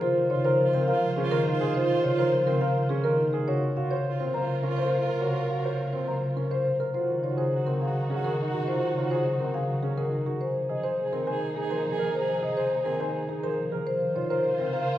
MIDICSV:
0, 0, Header, 1, 6, 480
1, 0, Start_track
1, 0, Tempo, 576923
1, 16, Time_signature, 3, 2, 24, 8
1, 12463, End_track
2, 0, Start_track
2, 0, Title_t, "Marimba"
2, 0, Program_c, 0, 12
2, 10, Note_on_c, 0, 72, 102
2, 170, Note_off_c, 0, 72, 0
2, 250, Note_on_c, 0, 73, 86
2, 371, Note_on_c, 0, 72, 105
2, 410, Note_off_c, 0, 73, 0
2, 530, Note_off_c, 0, 72, 0
2, 612, Note_on_c, 0, 70, 87
2, 729, Note_on_c, 0, 77, 105
2, 770, Note_off_c, 0, 70, 0
2, 890, Note_off_c, 0, 77, 0
2, 970, Note_on_c, 0, 68, 92
2, 1094, Note_on_c, 0, 70, 115
2, 1130, Note_off_c, 0, 68, 0
2, 1251, Note_off_c, 0, 70, 0
2, 1339, Note_on_c, 0, 68, 78
2, 1451, Note_on_c, 0, 72, 92
2, 1493, Note_off_c, 0, 68, 0
2, 1610, Note_off_c, 0, 72, 0
2, 1695, Note_on_c, 0, 73, 80
2, 1816, Note_on_c, 0, 72, 95
2, 1852, Note_off_c, 0, 73, 0
2, 1972, Note_off_c, 0, 72, 0
2, 2054, Note_on_c, 0, 70, 89
2, 2174, Note_on_c, 0, 77, 96
2, 2211, Note_off_c, 0, 70, 0
2, 2331, Note_off_c, 0, 77, 0
2, 2407, Note_on_c, 0, 68, 86
2, 2527, Note_on_c, 0, 70, 101
2, 2569, Note_off_c, 0, 68, 0
2, 2689, Note_off_c, 0, 70, 0
2, 2769, Note_on_c, 0, 68, 71
2, 2893, Note_on_c, 0, 73, 96
2, 2929, Note_off_c, 0, 68, 0
2, 3051, Note_off_c, 0, 73, 0
2, 3134, Note_on_c, 0, 77, 72
2, 3251, Note_on_c, 0, 73, 93
2, 3291, Note_off_c, 0, 77, 0
2, 3410, Note_off_c, 0, 73, 0
2, 3493, Note_on_c, 0, 72, 73
2, 3611, Note_on_c, 0, 82, 91
2, 3651, Note_off_c, 0, 72, 0
2, 3770, Note_off_c, 0, 82, 0
2, 3850, Note_on_c, 0, 70, 72
2, 3966, Note_on_c, 0, 72, 85
2, 4010, Note_off_c, 0, 70, 0
2, 4128, Note_off_c, 0, 72, 0
2, 4211, Note_on_c, 0, 70, 64
2, 4331, Note_on_c, 0, 73, 73
2, 4370, Note_off_c, 0, 70, 0
2, 4490, Note_off_c, 0, 73, 0
2, 4573, Note_on_c, 0, 77, 66
2, 4693, Note_on_c, 0, 73, 74
2, 4731, Note_off_c, 0, 77, 0
2, 4851, Note_off_c, 0, 73, 0
2, 4934, Note_on_c, 0, 72, 61
2, 5056, Note_on_c, 0, 82, 75
2, 5091, Note_off_c, 0, 72, 0
2, 5212, Note_off_c, 0, 82, 0
2, 5299, Note_on_c, 0, 70, 65
2, 5419, Note_on_c, 0, 72, 85
2, 5453, Note_off_c, 0, 70, 0
2, 5573, Note_off_c, 0, 72, 0
2, 5659, Note_on_c, 0, 70, 62
2, 5778, Note_on_c, 0, 72, 75
2, 5813, Note_off_c, 0, 70, 0
2, 5933, Note_off_c, 0, 72, 0
2, 6020, Note_on_c, 0, 73, 64
2, 6138, Note_on_c, 0, 72, 76
2, 6174, Note_off_c, 0, 73, 0
2, 6293, Note_off_c, 0, 72, 0
2, 6378, Note_on_c, 0, 70, 65
2, 6501, Note_on_c, 0, 77, 70
2, 6533, Note_off_c, 0, 70, 0
2, 6654, Note_off_c, 0, 77, 0
2, 6741, Note_on_c, 0, 68, 70
2, 6859, Note_on_c, 0, 70, 84
2, 6894, Note_off_c, 0, 68, 0
2, 7013, Note_off_c, 0, 70, 0
2, 7098, Note_on_c, 0, 68, 63
2, 7218, Note_on_c, 0, 72, 79
2, 7253, Note_off_c, 0, 68, 0
2, 7373, Note_off_c, 0, 72, 0
2, 7578, Note_on_c, 0, 72, 80
2, 7733, Note_off_c, 0, 72, 0
2, 7817, Note_on_c, 0, 70, 70
2, 7938, Note_on_c, 0, 77, 82
2, 7972, Note_off_c, 0, 70, 0
2, 8093, Note_off_c, 0, 77, 0
2, 8175, Note_on_c, 0, 68, 70
2, 8301, Note_on_c, 0, 70, 87
2, 8332, Note_off_c, 0, 68, 0
2, 8454, Note_off_c, 0, 70, 0
2, 8539, Note_on_c, 0, 68, 65
2, 8659, Note_on_c, 0, 72, 77
2, 8693, Note_off_c, 0, 68, 0
2, 8813, Note_off_c, 0, 72, 0
2, 8902, Note_on_c, 0, 75, 69
2, 9016, Note_on_c, 0, 72, 83
2, 9054, Note_off_c, 0, 75, 0
2, 9172, Note_off_c, 0, 72, 0
2, 9259, Note_on_c, 0, 70, 71
2, 9379, Note_on_c, 0, 80, 86
2, 9413, Note_off_c, 0, 70, 0
2, 9533, Note_off_c, 0, 80, 0
2, 9620, Note_on_c, 0, 68, 74
2, 9739, Note_on_c, 0, 70, 99
2, 9773, Note_off_c, 0, 68, 0
2, 9893, Note_off_c, 0, 70, 0
2, 9978, Note_on_c, 0, 68, 69
2, 10102, Note_on_c, 0, 72, 80
2, 10133, Note_off_c, 0, 68, 0
2, 10254, Note_off_c, 0, 72, 0
2, 10342, Note_on_c, 0, 75, 71
2, 10459, Note_on_c, 0, 72, 84
2, 10494, Note_off_c, 0, 75, 0
2, 10613, Note_off_c, 0, 72, 0
2, 10697, Note_on_c, 0, 70, 72
2, 10820, Note_on_c, 0, 80, 86
2, 10852, Note_off_c, 0, 70, 0
2, 10973, Note_off_c, 0, 80, 0
2, 11057, Note_on_c, 0, 68, 74
2, 11179, Note_on_c, 0, 70, 91
2, 11212, Note_off_c, 0, 68, 0
2, 11333, Note_off_c, 0, 70, 0
2, 11413, Note_on_c, 0, 68, 65
2, 11537, Note_on_c, 0, 72, 90
2, 11571, Note_off_c, 0, 68, 0
2, 11693, Note_off_c, 0, 72, 0
2, 11780, Note_on_c, 0, 73, 70
2, 11902, Note_on_c, 0, 72, 92
2, 11933, Note_off_c, 0, 73, 0
2, 12054, Note_off_c, 0, 72, 0
2, 12134, Note_on_c, 0, 70, 77
2, 12256, Note_on_c, 0, 77, 85
2, 12291, Note_off_c, 0, 70, 0
2, 12412, Note_off_c, 0, 77, 0
2, 12463, End_track
3, 0, Start_track
3, 0, Title_t, "Grand piano"
3, 0, Program_c, 1, 0
3, 16, Note_on_c, 1, 65, 87
3, 172, Note_off_c, 1, 65, 0
3, 256, Note_on_c, 1, 65, 83
3, 376, Note_on_c, 1, 70, 85
3, 412, Note_off_c, 1, 65, 0
3, 532, Note_off_c, 1, 70, 0
3, 617, Note_on_c, 1, 60, 84
3, 737, Note_on_c, 1, 70, 80
3, 773, Note_off_c, 1, 60, 0
3, 893, Note_off_c, 1, 70, 0
3, 977, Note_on_c, 1, 61, 80
3, 1096, Note_on_c, 1, 70, 83
3, 1132, Note_off_c, 1, 61, 0
3, 1252, Note_off_c, 1, 70, 0
3, 1338, Note_on_c, 1, 68, 83
3, 1458, Note_on_c, 1, 65, 89
3, 1493, Note_off_c, 1, 68, 0
3, 1613, Note_off_c, 1, 65, 0
3, 1698, Note_on_c, 1, 65, 90
3, 1818, Note_on_c, 1, 70, 77
3, 1853, Note_off_c, 1, 65, 0
3, 1973, Note_off_c, 1, 70, 0
3, 2055, Note_on_c, 1, 60, 83
3, 2174, Note_on_c, 1, 70, 80
3, 2212, Note_off_c, 1, 60, 0
3, 2331, Note_off_c, 1, 70, 0
3, 2414, Note_on_c, 1, 61, 82
3, 2535, Note_on_c, 1, 70, 81
3, 2571, Note_off_c, 1, 61, 0
3, 2692, Note_off_c, 1, 70, 0
3, 2775, Note_on_c, 1, 68, 80
3, 2895, Note_on_c, 1, 66, 81
3, 2932, Note_off_c, 1, 68, 0
3, 3052, Note_off_c, 1, 66, 0
3, 3134, Note_on_c, 1, 66, 81
3, 3253, Note_on_c, 1, 72, 74
3, 3291, Note_off_c, 1, 66, 0
3, 3411, Note_off_c, 1, 72, 0
3, 3494, Note_on_c, 1, 60, 75
3, 3615, Note_on_c, 1, 72, 70
3, 3651, Note_off_c, 1, 60, 0
3, 3772, Note_off_c, 1, 72, 0
3, 3854, Note_on_c, 1, 61, 67
3, 3975, Note_on_c, 1, 72, 71
3, 4011, Note_off_c, 1, 61, 0
3, 4132, Note_off_c, 1, 72, 0
3, 4216, Note_on_c, 1, 70, 66
3, 4335, Note_on_c, 1, 66, 70
3, 4372, Note_off_c, 1, 70, 0
3, 4492, Note_off_c, 1, 66, 0
3, 4577, Note_on_c, 1, 66, 62
3, 4696, Note_on_c, 1, 72, 68
3, 4732, Note_off_c, 1, 66, 0
3, 4852, Note_off_c, 1, 72, 0
3, 4933, Note_on_c, 1, 60, 68
3, 5055, Note_on_c, 1, 72, 56
3, 5091, Note_off_c, 1, 60, 0
3, 5212, Note_off_c, 1, 72, 0
3, 5295, Note_on_c, 1, 61, 60
3, 5414, Note_on_c, 1, 72, 64
3, 5452, Note_off_c, 1, 61, 0
3, 5571, Note_off_c, 1, 72, 0
3, 5655, Note_on_c, 1, 70, 58
3, 5774, Note_on_c, 1, 65, 65
3, 5812, Note_off_c, 1, 70, 0
3, 5931, Note_off_c, 1, 65, 0
3, 6016, Note_on_c, 1, 65, 66
3, 6135, Note_on_c, 1, 68, 65
3, 6172, Note_off_c, 1, 65, 0
3, 6292, Note_off_c, 1, 68, 0
3, 6377, Note_on_c, 1, 60, 67
3, 6496, Note_on_c, 1, 68, 58
3, 6532, Note_off_c, 1, 60, 0
3, 6652, Note_off_c, 1, 68, 0
3, 6737, Note_on_c, 1, 61, 68
3, 6856, Note_on_c, 1, 68, 65
3, 6892, Note_off_c, 1, 61, 0
3, 7012, Note_off_c, 1, 68, 0
3, 7097, Note_on_c, 1, 66, 67
3, 7218, Note_on_c, 1, 65, 69
3, 7252, Note_off_c, 1, 66, 0
3, 7373, Note_off_c, 1, 65, 0
3, 7458, Note_on_c, 1, 65, 67
3, 7581, Note_on_c, 1, 68, 68
3, 7613, Note_off_c, 1, 65, 0
3, 7734, Note_off_c, 1, 68, 0
3, 7820, Note_on_c, 1, 60, 69
3, 7938, Note_on_c, 1, 68, 64
3, 7973, Note_off_c, 1, 60, 0
3, 8093, Note_off_c, 1, 68, 0
3, 8178, Note_on_c, 1, 61, 66
3, 8298, Note_on_c, 1, 68, 64
3, 8333, Note_off_c, 1, 61, 0
3, 8453, Note_off_c, 1, 68, 0
3, 8537, Note_on_c, 1, 66, 64
3, 8692, Note_off_c, 1, 66, 0
3, 8896, Note_on_c, 1, 68, 68
3, 9016, Note_on_c, 1, 72, 65
3, 9052, Note_off_c, 1, 68, 0
3, 9172, Note_off_c, 1, 72, 0
3, 9257, Note_on_c, 1, 60, 73
3, 9375, Note_on_c, 1, 72, 69
3, 9412, Note_off_c, 1, 60, 0
3, 9532, Note_off_c, 1, 72, 0
3, 9615, Note_on_c, 1, 63, 71
3, 9733, Note_on_c, 1, 72, 70
3, 9772, Note_off_c, 1, 63, 0
3, 9891, Note_off_c, 1, 72, 0
3, 9975, Note_on_c, 1, 70, 69
3, 10132, Note_off_c, 1, 70, 0
3, 10337, Note_on_c, 1, 68, 72
3, 10457, Note_on_c, 1, 72, 70
3, 10492, Note_off_c, 1, 68, 0
3, 10612, Note_off_c, 1, 72, 0
3, 10696, Note_on_c, 1, 60, 73
3, 10816, Note_on_c, 1, 72, 69
3, 10852, Note_off_c, 1, 60, 0
3, 10972, Note_off_c, 1, 72, 0
3, 11056, Note_on_c, 1, 63, 70
3, 11177, Note_on_c, 1, 72, 71
3, 11212, Note_off_c, 1, 63, 0
3, 11332, Note_off_c, 1, 72, 0
3, 11416, Note_on_c, 1, 70, 73
3, 11572, Note_off_c, 1, 70, 0
3, 11776, Note_on_c, 1, 65, 69
3, 11898, Note_on_c, 1, 70, 74
3, 11932, Note_off_c, 1, 65, 0
3, 12053, Note_off_c, 1, 70, 0
3, 12138, Note_on_c, 1, 60, 72
3, 12256, Note_on_c, 1, 70, 69
3, 12293, Note_off_c, 1, 60, 0
3, 12412, Note_off_c, 1, 70, 0
3, 12463, End_track
4, 0, Start_track
4, 0, Title_t, "String section"
4, 0, Program_c, 2, 48
4, 16, Note_on_c, 2, 65, 95
4, 16, Note_on_c, 2, 72, 89
4, 2743, Note_off_c, 2, 65, 0
4, 2743, Note_off_c, 2, 72, 0
4, 2893, Note_on_c, 2, 65, 85
4, 2893, Note_on_c, 2, 70, 91
4, 5621, Note_off_c, 2, 65, 0
4, 5621, Note_off_c, 2, 70, 0
4, 5781, Note_on_c, 2, 63, 69
4, 5781, Note_on_c, 2, 66, 74
4, 8505, Note_off_c, 2, 63, 0
4, 8505, Note_off_c, 2, 66, 0
4, 8659, Note_on_c, 2, 63, 76
4, 8663, Note_on_c, 2, 68, 77
4, 11384, Note_off_c, 2, 63, 0
4, 11387, Note_off_c, 2, 68, 0
4, 11535, Note_on_c, 2, 65, 88
4, 11536, Note_on_c, 2, 72, 86
4, 12463, Note_off_c, 2, 65, 0
4, 12463, Note_off_c, 2, 72, 0
4, 12463, End_track
5, 0, Start_track
5, 0, Title_t, "Soprano saxophone"
5, 0, Program_c, 3, 64
5, 15, Note_on_c, 3, 65, 46
5, 191, Note_off_c, 3, 65, 0
5, 267, Note_on_c, 3, 65, 64
5, 443, Note_off_c, 3, 65, 0
5, 522, Note_on_c, 3, 65, 79
5, 696, Note_off_c, 3, 65, 0
5, 769, Note_on_c, 3, 65, 86
5, 945, Note_off_c, 3, 65, 0
5, 1021, Note_on_c, 3, 65, 105
5, 1196, Note_off_c, 3, 65, 0
5, 1272, Note_on_c, 3, 65, 89
5, 1447, Note_off_c, 3, 65, 0
5, 1521, Note_on_c, 3, 65, 94
5, 1697, Note_off_c, 3, 65, 0
5, 1771, Note_on_c, 3, 65, 88
5, 1947, Note_off_c, 3, 65, 0
5, 2024, Note_on_c, 3, 65, 75
5, 2199, Note_off_c, 3, 65, 0
5, 2275, Note_on_c, 3, 65, 62
5, 2450, Note_off_c, 3, 65, 0
5, 2523, Note_on_c, 3, 65, 49
5, 2699, Note_off_c, 3, 65, 0
5, 2895, Note_on_c, 3, 65, 45
5, 3071, Note_off_c, 3, 65, 0
5, 3146, Note_on_c, 3, 65, 54
5, 3322, Note_off_c, 3, 65, 0
5, 3397, Note_on_c, 3, 65, 70
5, 3573, Note_off_c, 3, 65, 0
5, 3652, Note_on_c, 3, 65, 73
5, 3826, Note_off_c, 3, 65, 0
5, 3899, Note_on_c, 3, 65, 83
5, 4075, Note_off_c, 3, 65, 0
5, 4149, Note_on_c, 3, 65, 77
5, 4325, Note_off_c, 3, 65, 0
5, 4402, Note_on_c, 3, 65, 75
5, 4577, Note_off_c, 3, 65, 0
5, 4655, Note_on_c, 3, 65, 69
5, 4830, Note_off_c, 3, 65, 0
5, 4905, Note_on_c, 3, 65, 64
5, 5080, Note_off_c, 3, 65, 0
5, 5156, Note_on_c, 3, 65, 47
5, 5331, Note_off_c, 3, 65, 0
5, 5411, Note_on_c, 3, 65, 37
5, 5585, Note_off_c, 3, 65, 0
5, 5782, Note_on_c, 3, 66, 38
5, 5955, Note_off_c, 3, 66, 0
5, 6033, Note_on_c, 3, 66, 48
5, 6206, Note_off_c, 3, 66, 0
5, 6279, Note_on_c, 3, 66, 63
5, 6454, Note_off_c, 3, 66, 0
5, 6534, Note_on_c, 3, 66, 64
5, 6708, Note_off_c, 3, 66, 0
5, 6783, Note_on_c, 3, 66, 80
5, 6958, Note_off_c, 3, 66, 0
5, 7036, Note_on_c, 3, 66, 76
5, 7210, Note_off_c, 3, 66, 0
5, 7281, Note_on_c, 3, 66, 76
5, 7457, Note_off_c, 3, 66, 0
5, 7532, Note_on_c, 3, 66, 69
5, 7708, Note_off_c, 3, 66, 0
5, 7786, Note_on_c, 3, 66, 63
5, 7960, Note_off_c, 3, 66, 0
5, 8038, Note_on_c, 3, 66, 50
5, 8212, Note_off_c, 3, 66, 0
5, 8288, Note_on_c, 3, 66, 42
5, 8463, Note_off_c, 3, 66, 0
5, 8654, Note_on_c, 3, 68, 41
5, 8831, Note_off_c, 3, 68, 0
5, 8905, Note_on_c, 3, 68, 54
5, 9081, Note_off_c, 3, 68, 0
5, 9156, Note_on_c, 3, 68, 65
5, 9333, Note_off_c, 3, 68, 0
5, 9404, Note_on_c, 3, 68, 72
5, 9581, Note_off_c, 3, 68, 0
5, 9655, Note_on_c, 3, 68, 82
5, 9832, Note_off_c, 3, 68, 0
5, 9907, Note_on_c, 3, 68, 86
5, 10084, Note_off_c, 3, 68, 0
5, 10159, Note_on_c, 3, 68, 80
5, 10336, Note_off_c, 3, 68, 0
5, 10411, Note_on_c, 3, 68, 70
5, 10587, Note_off_c, 3, 68, 0
5, 10662, Note_on_c, 3, 68, 70
5, 10838, Note_off_c, 3, 68, 0
5, 10913, Note_on_c, 3, 68, 58
5, 11089, Note_off_c, 3, 68, 0
5, 11165, Note_on_c, 3, 68, 46
5, 11341, Note_off_c, 3, 68, 0
5, 11535, Note_on_c, 3, 65, 44
5, 11711, Note_off_c, 3, 65, 0
5, 11785, Note_on_c, 3, 65, 55
5, 11961, Note_off_c, 3, 65, 0
5, 12035, Note_on_c, 3, 65, 71
5, 12212, Note_off_c, 3, 65, 0
5, 12289, Note_on_c, 3, 65, 74
5, 12463, Note_off_c, 3, 65, 0
5, 12463, End_track
6, 0, Start_track
6, 0, Title_t, "Harp"
6, 0, Program_c, 4, 46
6, 0, Note_on_c, 4, 53, 85
6, 0, Note_on_c, 4, 56, 97
6, 0, Note_on_c, 4, 60, 78
6, 16, Note_on_c, 4, 49, 98
6, 136, Note_on_c, 4, 51, 83
6, 256, Note_on_c, 4, 48, 81
6, 364, Note_off_c, 4, 53, 0
6, 374, Note_on_c, 4, 53, 103
6, 486, Note_off_c, 4, 56, 0
6, 496, Note_on_c, 4, 56, 90
6, 606, Note_off_c, 4, 49, 0
6, 616, Note_on_c, 4, 49, 81
6, 727, Note_off_c, 4, 53, 0
6, 736, Note_on_c, 4, 53, 94
6, 846, Note_off_c, 4, 56, 0
6, 856, Note_on_c, 4, 56, 87
6, 977, Note_on_c, 4, 58, 78
6, 1087, Note_off_c, 4, 51, 0
6, 1097, Note_on_c, 4, 51, 116
6, 1209, Note_off_c, 4, 48, 0
6, 1219, Note_on_c, 4, 48, 83
6, 1331, Note_off_c, 4, 51, 0
6, 1341, Note_on_c, 4, 51, 86
6, 1448, Note_off_c, 4, 49, 0
6, 1458, Note_on_c, 4, 49, 97
6, 1568, Note_off_c, 4, 51, 0
6, 1578, Note_on_c, 4, 51, 81
6, 1690, Note_off_c, 4, 48, 0
6, 1700, Note_on_c, 4, 48, 79
6, 1808, Note_off_c, 4, 53, 0
6, 1818, Note_on_c, 4, 53, 100
6, 1928, Note_off_c, 4, 56, 0
6, 1938, Note_on_c, 4, 56, 90
6, 2046, Note_off_c, 4, 49, 0
6, 2056, Note_on_c, 4, 49, 87
6, 2289, Note_off_c, 4, 56, 0
6, 2299, Note_on_c, 4, 56, 89
6, 2407, Note_off_c, 4, 58, 0
6, 2417, Note_on_c, 4, 58, 80
6, 2525, Note_off_c, 4, 51, 0
6, 2535, Note_on_c, 4, 51, 105
6, 2646, Note_off_c, 4, 48, 0
6, 2656, Note_on_c, 4, 48, 76
6, 2766, Note_off_c, 4, 51, 0
6, 2776, Note_on_c, 4, 51, 75
6, 2782, Note_off_c, 4, 60, 0
6, 2886, Note_off_c, 4, 49, 0
6, 2896, Note_on_c, 4, 49, 89
6, 2915, Note_off_c, 4, 48, 0
6, 2915, Note_off_c, 4, 51, 0
6, 2917, Note_off_c, 4, 56, 0
6, 3139, Note_on_c, 4, 48, 73
6, 3369, Note_off_c, 4, 58, 0
6, 3379, Note_on_c, 4, 58, 76
6, 3488, Note_off_c, 4, 49, 0
6, 3498, Note_on_c, 4, 49, 76
6, 3618, Note_on_c, 4, 54, 85
6, 3729, Note_off_c, 4, 58, 0
6, 3739, Note_on_c, 4, 58, 70
6, 3858, Note_on_c, 4, 60, 65
6, 4086, Note_off_c, 4, 48, 0
6, 4096, Note_on_c, 4, 48, 68
6, 4328, Note_off_c, 4, 49, 0
6, 4338, Note_on_c, 4, 49, 80
6, 4571, Note_off_c, 4, 48, 0
6, 4580, Note_on_c, 4, 48, 64
6, 4810, Note_off_c, 4, 58, 0
6, 4820, Note_on_c, 4, 58, 70
6, 4931, Note_off_c, 4, 49, 0
6, 4941, Note_on_c, 4, 49, 68
6, 5049, Note_off_c, 4, 54, 0
6, 5059, Note_on_c, 4, 54, 81
6, 5062, Note_off_c, 4, 53, 0
6, 5169, Note_off_c, 4, 58, 0
6, 5179, Note_on_c, 4, 58, 68
6, 5288, Note_off_c, 4, 60, 0
6, 5298, Note_on_c, 4, 60, 65
6, 5529, Note_off_c, 4, 48, 0
6, 5539, Note_on_c, 4, 48, 60
6, 5768, Note_off_c, 4, 49, 0
6, 5778, Note_on_c, 4, 49, 74
6, 5796, Note_off_c, 4, 60, 0
6, 5797, Note_off_c, 4, 48, 0
6, 5898, Note_on_c, 4, 51, 68
6, 6017, Note_on_c, 4, 48, 60
6, 6247, Note_off_c, 4, 54, 0
6, 6257, Note_on_c, 4, 54, 67
6, 6366, Note_off_c, 4, 49, 0
6, 6376, Note_on_c, 4, 49, 66
6, 6605, Note_off_c, 4, 54, 0
6, 6615, Note_on_c, 4, 54, 65
6, 6735, Note_on_c, 4, 56, 61
6, 6843, Note_off_c, 4, 51, 0
6, 6853, Note_on_c, 4, 51, 82
6, 6964, Note_off_c, 4, 48, 0
6, 6974, Note_on_c, 4, 48, 67
6, 7087, Note_off_c, 4, 51, 0
6, 7097, Note_on_c, 4, 51, 64
6, 7208, Note_off_c, 4, 49, 0
6, 7218, Note_on_c, 4, 49, 75
6, 7327, Note_off_c, 4, 51, 0
6, 7449, Note_off_c, 4, 48, 0
6, 7459, Note_on_c, 4, 48, 64
6, 7690, Note_off_c, 4, 54, 0
6, 7700, Note_on_c, 4, 54, 67
6, 7810, Note_off_c, 4, 49, 0
6, 7820, Note_on_c, 4, 49, 65
6, 8050, Note_off_c, 4, 54, 0
6, 8060, Note_on_c, 4, 54, 72
6, 8172, Note_off_c, 4, 56, 0
6, 8182, Note_on_c, 4, 56, 66
6, 8303, Note_on_c, 4, 51, 80
6, 8413, Note_off_c, 4, 48, 0
6, 8423, Note_on_c, 4, 48, 66
6, 8424, Note_off_c, 4, 58, 0
6, 8532, Note_off_c, 4, 51, 0
6, 8542, Note_on_c, 4, 51, 61
6, 8677, Note_off_c, 4, 49, 0
6, 8677, Note_off_c, 4, 54, 0
6, 8678, Note_off_c, 4, 51, 0
6, 8679, Note_off_c, 4, 48, 0
6, 8782, Note_on_c, 4, 53, 62
6, 8900, Note_on_c, 4, 48, 68
6, 9141, Note_on_c, 4, 58, 70
6, 9261, Note_on_c, 4, 51, 70
6, 9492, Note_off_c, 4, 58, 0
6, 9502, Note_on_c, 4, 58, 70
6, 9621, Note_on_c, 4, 60, 68
6, 9732, Note_off_c, 4, 53, 0
6, 9742, Note_on_c, 4, 53, 93
6, 9852, Note_off_c, 4, 48, 0
6, 9862, Note_on_c, 4, 48, 71
6, 9973, Note_off_c, 4, 53, 0
6, 9983, Note_on_c, 4, 53, 66
6, 10209, Note_off_c, 4, 53, 0
6, 10219, Note_on_c, 4, 53, 67
6, 10332, Note_off_c, 4, 48, 0
6, 10342, Note_on_c, 4, 48, 68
6, 10571, Note_off_c, 4, 58, 0
6, 10581, Note_on_c, 4, 58, 75
6, 10689, Note_off_c, 4, 51, 0
6, 10699, Note_on_c, 4, 51, 75
6, 10931, Note_off_c, 4, 58, 0
6, 10941, Note_on_c, 4, 58, 75
6, 11051, Note_off_c, 4, 60, 0
6, 11061, Note_on_c, 4, 60, 67
6, 11171, Note_off_c, 4, 53, 0
6, 11181, Note_on_c, 4, 53, 96
6, 11289, Note_off_c, 4, 48, 0
6, 11299, Note_on_c, 4, 48, 74
6, 11408, Note_off_c, 4, 53, 0
6, 11418, Note_on_c, 4, 53, 70
6, 11426, Note_off_c, 4, 56, 0
6, 11556, Note_off_c, 4, 48, 0
6, 11557, Note_off_c, 4, 51, 0
6, 11558, Note_off_c, 4, 58, 0
6, 11661, Note_on_c, 4, 51, 70
6, 11781, Note_on_c, 4, 48, 73
6, 12019, Note_on_c, 4, 56, 75
6, 12139, Note_on_c, 4, 49, 72
6, 12367, Note_off_c, 4, 56, 0
6, 12377, Note_on_c, 4, 56, 73
6, 12463, Note_off_c, 4, 48, 0
6, 12463, Note_off_c, 4, 49, 0
6, 12463, Note_off_c, 4, 51, 0
6, 12463, Note_off_c, 4, 53, 0
6, 12463, Note_off_c, 4, 56, 0
6, 12463, Note_off_c, 4, 60, 0
6, 12463, End_track
0, 0, End_of_file